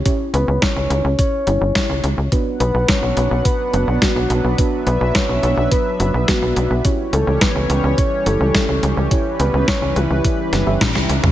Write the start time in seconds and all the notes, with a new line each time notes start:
0.06 C#4 E4 G4 C#5, kick, closed hi-hat
0.34 C#2 B4, closed hi-hat
0.48 C#2
0.62 C#5, kick, snare, closed hi-hat
0.76 C#2
0.90 C#2, closed hi-hat
1.05 C#2
1.19 C#5, kick, closed hi-hat
1.47 G1 C#4 E4 G4 C#5, closed hi-hat
1.61 G1
1.75 C#4 E4 G4 C#5, kick, snare, closed hi-hat
1.90 C#2
2.04 C#2, closed hi-hat
2.18 C#2
2.32 F#3 B3 D4 F#4 B4 F#5, kick, closed hi-hat
2.60 B1 B4, closed hi-hat
2.74 B1
2.88 C#5, kick, snare, closed hi-hat
3.03 B1
3.17 B1, closed hi-hat
3.31 B1
3.45 B4, kick, closed hi-hat
3.73 F#1 B3 D4 F#4 B4, closed hi-hat
3.88 B1
4.02 B3 D4 F#4 B4, kick, snare, closed hi-hat
4.16 B1
4.30 B1, closed hi-hat
4.44 B1
4.58 B3 D4 F#4 B4 E5, kick, closed hi-hat
4.87 B1 B4, closed hi-hat
5.01 B1
5.15 C#5, kick, snare, closed hi-hat
5.29 B1
5.43 B1, closed hi-hat
5.57 B1
5.71 B4, kick, closed hi-hat
6.00 F#1 B3 D4 F#4 B4, closed hi-hat
6.14 B1
6.28 B3 D4 F#4 B4, kick, snare, closed hi-hat
6.42 B1
6.56 B1, closed hi-hat
6.71 B1
6.85 E3 G3 C#4 E4 G4 C#5, kick, closed hi-hat
7.13 C#2 A4, closed hi-hat
7.27 C#2
7.41 B4, kick, snare, closed hi-hat
7.55 C#2
7.70 C#2, closed hi-hat
7.84 C#2
7.98 C#5, kick, closed hi-hat
8.26 G1 C#4 E4 G4 A4 C#5, closed hi-hat
8.40 C#2
8.55 C#4 E4 G4 C#5, kick, snare, closed hi-hat
8.69 C#2
8.83 C#2, closed hi-hat
8.97 C#2
9.11 C#4 E4 G4 B4 C#5, kick, closed hi-hat
9.40 C#2 B4, closed hi-hat
9.54 C#2
9.68 C#5, kick, snare, closed hi-hat
9.82 C#2
9.96 C#2 E4, closed hi-hat
10.10 C#2
10.24 kick, closed hi-hat
10.53 G1, snare, closed hi-hat
10.67 G1 C#4 E4 G4 E5
10.81 kick, snare, closed hi-hat, high tom
10.95 C#2, snare
11.09 C#2, closed hi-hat
11.24 C#2, mid tom